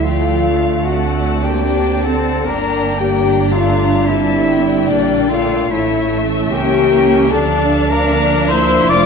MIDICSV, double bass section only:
0, 0, Header, 1, 2, 480
1, 0, Start_track
1, 0, Key_signature, -1, "minor"
1, 0, Tempo, 810811
1, 1456, Time_signature, 4, 2, 24, 8
1, 3866, Tempo, 794702
1, 5393, End_track
2, 0, Start_track
2, 0, Title_t, "Double bass section"
2, 0, Program_c, 0, 48
2, 0, Note_on_c, 0, 38, 50
2, 478, Note_off_c, 0, 38, 0
2, 499, Note_on_c, 0, 38, 56
2, 1436, Note_off_c, 0, 38, 0
2, 1453, Note_on_c, 0, 31, 59
2, 2895, Note_on_c, 0, 34, 57
2, 2897, Note_off_c, 0, 31, 0
2, 3383, Note_on_c, 0, 33, 61
2, 3384, Note_off_c, 0, 34, 0
2, 3854, Note_off_c, 0, 33, 0
2, 3859, Note_on_c, 0, 37, 58
2, 4331, Note_off_c, 0, 37, 0
2, 4342, Note_on_c, 0, 38, 71
2, 5296, Note_on_c, 0, 29, 68
2, 5302, Note_off_c, 0, 38, 0
2, 5393, Note_off_c, 0, 29, 0
2, 5393, End_track
0, 0, End_of_file